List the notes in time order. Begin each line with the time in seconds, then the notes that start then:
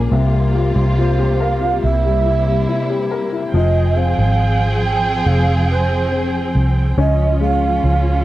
Already playing: G#3 A#3 C#4 F4 A#4
0.11 C2 C3 G3 F4
0.33 G3
0.55 F4
0.76 C2 G3
0.98 F4 C5
1.19 G4
1.40 A#4 F5
1.61 F4
1.83 C2 C3 E4 E5
2.05 G3
2.26 E4
2.47 G3
2.69 E4
2.90 G4
3.11 A#4
3.33 E4
3.54 F1 F3 C4 G#4 D#5 G5
3.97 C4 F5
4.18 G#1
4.84 G5
5.26 F1 G#4 F5
5.70 C5
6.12 C4
6.55 C2
6.97 C#2 F3 C#4 F4 D#5
7.41 G#3 F5
7.84 C#2